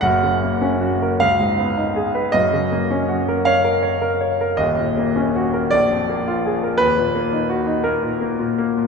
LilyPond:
<<
  \new Staff \with { instrumentName = "Grand piano" } { \time 12/8 \key fis \major \tempo 4. = 54 fis''4. eis''4. dis''4. eis''4. | dis''4. d''4. b'4. ais'8 r4 | }
  \new Staff \with { instrumentName = "Grand piano" } { \time 12/8 \key fis \major <fis,, fis,>16 cis16 ais16 cis'16 fis'16 ais'16 cis,16 gis,16 b16 dis'16 gis'16 b'16 fis,16 cis16 ais16 cis'16 fis'16 ais'16 cis''16 ais'16 cis''16 ais'16 cis''16 ais'16 | <dis,, dis,>16 ais,16 ais16 cis'16 fis'16 ais'16 ais,,16 eis,16 ais16 eis'16 gis'16 ais'16 dis,16 ais,16 ais16 dis'16 fis'16 dis'16 ais16 ais,16 ais16 ais,16 ais16 ais,16 | }
>>